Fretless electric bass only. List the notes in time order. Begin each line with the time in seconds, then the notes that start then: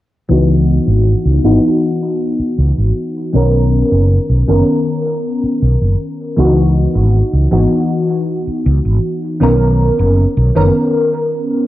0.30 C#2
0.87 G#1
1.25 C#2
1.44 G#1
2.39 muted fretless electric bass stroke
2.58 C#2
2.77 G#1
3.34 B1
3.91 F#1
4.29 B1
4.48 F#1
5.43 muted fretless electric bass stroke
5.62 B1
5.81 F#1
6.38 C#2
6.95 G#1
7.33 C#2
7.52 G#1
8.47 muted fretless electric bass stroke
8.66 C#2
8.85 G#1
9.42 B1
9.99 F#1
10.37 B1
10.56 F#1